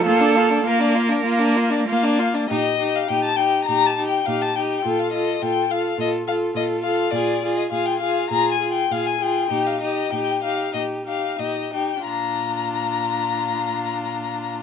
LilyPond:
<<
  \new Staff \with { instrumentName = "Violin" } { \time 4/4 \key bes \major \tempo 4 = 99 f''16 d''16 f''16 d''16 f''16 d''16 f''16 d''16 f''16 d''16 f''16 d''16 f''16 d''16 f''16 d''16 | ees''8. f''16 g''16 a''16 g''8 \tuplet 3/2 { bes''8 a''8 g''8 } f''16 a''16 g''8~ | g''16 f''16 ees''8 g''8 f''8 ees''8 f''8 ees''8 f''8 | d''8. ees''16 f''16 g''16 f''8 \tuplet 3/2 { bes''8 aes''8 g''8 } f''16 aes''16 g''8~ |
g''16 f''16 ees''8 g''8 f''8 ees''8 f''8 ees''8 g''8 | bes''1 | }
  \new Staff \with { instrumentName = "Violin" } { \time 4/4 \key bes \major f'16 d'16 f'16 d'16 f'16 d'16 f'16 d'16 f'16 d'16 f'16 d'16 f'16 d'16 f'16 d'16 | g'8 g'8 g'8 g'8 g'8 g'8 g'8 g'8 | a'8 a'8 a'8 a'8 a'8 a'8 a'8 a'8 | aes'8 aes'8 aes'8 aes'8 aes'8 aes'8 aes'8 aes'8 |
g'8 g'8 g'8 g'8 g'8 g'8 g'8 g'8 | f'1 | }
  \new Staff \with { instrumentName = "Viola" } { \time 4/4 \key bes \major bes4 bes4 bes4 bes4 | ees'8 ees'8 ees'8 ees'8 ees'8 ees'8 ees'8 ees'8 | f'8 f'8 f'8 f'8 f'8 f'8 f'8 f'8 | f'8 f'8 f'8 f'8 f'8 f'8 f'8 f'8 |
ees'8 ees'8 ees'8 ees'8 ees'8 ees'8 ees'8 ees'8 | d'1 | }
  \new Staff \with { instrumentName = "Cello" } { \clef bass \time 4/4 \key bes \major a'4 bes'2~ bes'8 r8 | bes,4 bes,4 bes,4 bes,4 | bes,4 bes,4 bes,4 bes,4 | bes,4 bes,4 bes,4 bes,4 |
bes,4 bes,4 bes,4 bes,4 | bes,1 | }
>>